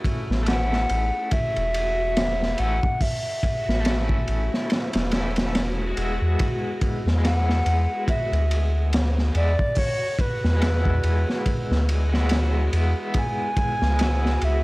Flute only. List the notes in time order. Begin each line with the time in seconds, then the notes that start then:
0.49 F#5
1.32 E5
2.59 F#5
3.02 E5
7.25 F#5
8.09 E5
9.36 D5
9.78 C#5
10.21 B4
13.17 G#5
14.44 E5